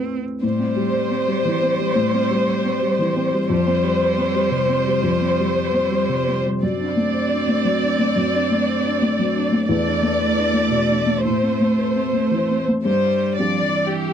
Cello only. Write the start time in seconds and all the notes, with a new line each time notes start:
Already playing: C4
0.43 G3
3.51 G3
6.63 C4
9.70 A3
12.86 G3
13.38 F3
13.64 E3